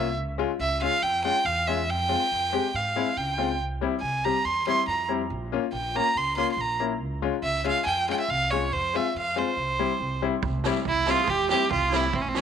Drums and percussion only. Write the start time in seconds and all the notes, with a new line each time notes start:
10.43 kick
10.64 snare
10.75 snare
10.85 kick
11.06 snare
11.28 kick
11.49 snare
11.71 kick
11.92 snare
12.13 kick
12.35 snare